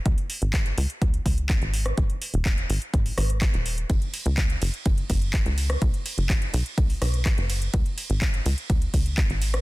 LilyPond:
<<
  \new Staff \with { instrumentName = "Analog synth bass" } { \clef bass \time 4/4 \key cis \mixolydian \tempo 4 = 125 cis,16 r8 gis,,8. cis,16 r16 cis,16 r16 cis,8. gis,,8. | gis,,16 r8 dis,,8. gis,,16 r16 gis,,16 r16 gis,,8. dis,,8. | fis,,16 r8 cis,8. fis,,16 r16 fis,,16 r16 fis,,8. cis,8. | b,,16 r8 fis,,8. b,,16 r16 b,,16 r16 b,,8. fis,,8. |
cis,16 r8 gis,,8. cis,16 r16 cis,16 r16 cis,8. gis,,8. | }
  \new DrumStaff \with { instrumentName = "Drums" } \drummode { \time 4/4 <hh bd>16 hh16 hho16 hh16 <hc hh bd>16 hh16 hho16 hh16 <hh bd>16 hh16 <hho bd>16 hh16 <hc hh bd>16 hh16 hho16 <hh ss>16 | <hh bd>16 hh16 hho16 hh16 <hc hh bd>16 hh16 hho16 hh16 <hh bd>16 hho16 <hho ss>16 hh16 <hc hh bd ss>16 hh16 hho16 hh16 | <hh bd cymr>16 hh16 <hho cymr>16 hh16 <hc hh bd cymr>16 hh16 <hho cymr>16 hh16 <hh bd cymr>16 hh16 <hho bd cymr>16 hh16 <hc hh bd cymr>16 hh16 <hho cymr>16 <hh ss>16 | <hh bd cymr>16 hh16 <hho cymr>16 hh16 <hc hh bd cymr>16 hh16 <hho cymr>16 hh16 <hh bd cymr>16 hho16 <hho cymr ss>16 hh16 <hc hh bd cymr ss>16 hh16 <hho cymr>16 hh16 |
<hh bd cymr>16 hh16 <hho cymr>16 hh16 <hc hh bd cymr>16 hh16 <hho cymr>16 hh16 <hh bd cymr>16 hh16 <hho bd cymr>16 hh16 <hc hh bd cymr>16 hh16 <hho cymr>16 <hh ss>16 | }
>>